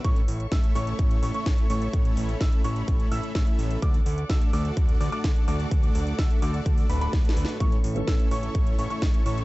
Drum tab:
HH |x--x--o--x--x--x--o--x--x--x--o--x--x--x--o--x--|x--x--o--x--x--x--o--x--x--x--o--x--x--x--o--x--|x--x--o--x--x--x--o--x--x--x--o--x--x--x--o--x--|x--x--o--x--x--x--o--x--x--o--o--x--x--x--o--x--|
SD |------------o-----------------------o-----------|------------o-----------------------o-----------|------------o-----------------------o-----------|------------o-----------------------o---o---o---|
BD |o-----------o-----------o-----------o-----------|o-----------o-----------o-----------o-----------|o-----------o-----------o-----------o-----------|o-----------o-----------o-----------o-----------|

HH |x--x--o--x--x--x--o--x--x--x--o--x--x--x--o--x--|
SD |------------o-----------------------o-----------|
BD |o-----------o-----------o-----------o-----------|